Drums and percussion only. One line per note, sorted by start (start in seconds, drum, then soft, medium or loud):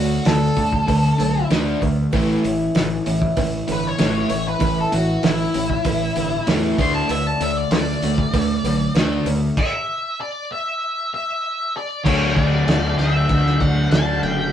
0.25 snare loud
0.25 open hi-hat medium
0.25 cowbell medium
0.57 kick medium
0.57 open hi-hat medium
0.73 kick medium
0.88 kick medium
0.88 open hi-hat medium
0.88 cowbell medium
1.20 open hi-hat medium
1.20 cowbell medium
1.51 snare loud
1.51 open hi-hat medium
1.51 cowbell medium
1.82 kick medium
1.82 open hi-hat medium
1.82 cowbell medium
2.13 kick loud
2.13 open hi-hat medium
2.13 cowbell medium
2.45 open hi-hat medium
2.75 snare loud
2.75 open hi-hat medium
2.75 cowbell medium
3.06 open hi-hat medium
3.22 kick medium
3.37 kick loud
3.37 open hi-hat medium
3.37 cowbell medium
3.68 open hi-hat medium
3.68 cowbell medium
3.98 snare loud
3.98 open hi-hat medium
3.98 cowbell medium
4.30 open hi-hat medium
4.30 cowbell medium
4.60 kick loud
4.60 open hi-hat medium
4.60 cowbell medium
4.92 open hi-hat medium
5.23 snare loud
5.23 open hi-hat medium
5.23 cowbell medium
5.54 open hi-hat medium
5.70 kick medium
5.85 kick loud
5.85 open hi-hat medium
5.85 cowbell medium
6.16 open hi-hat medium
6.16 cowbell medium
6.47 snare loud
6.47 open hi-hat medium
6.47 cowbell medium
6.78 kick loud
6.78 open hi-hat medium
6.78 cowbell medium
7.09 open hi-hat medium
7.09 cowbell medium
7.41 open hi-hat medium
7.71 snare loud
7.71 open hi-hat medium
7.71 cowbell medium
8.02 open hi-hat medium
8.18 kick medium
8.34 kick loud
8.34 open hi-hat medium
8.34 cowbell medium
8.65 open hi-hat medium
8.65 cowbell medium
8.95 snare loud
8.95 open hi-hat medium
8.95 cowbell medium
9.26 open hi-hat medium
9.26 cowbell medium
9.57 kick loud
9.57 crash loud
12.06 kick loud
12.06 crash loud
12.06 crash medium
12.37 kick medium
12.37 crash medium
12.68 snare loud
12.68 crash medium
12.99 snare soft
12.99 crash medium
13.29 kick medium
13.29 crash medium
13.46 snare soft
13.61 kick medium
13.61 crash medium
13.91 snare loud
13.91 crash medium
14.23 crash medium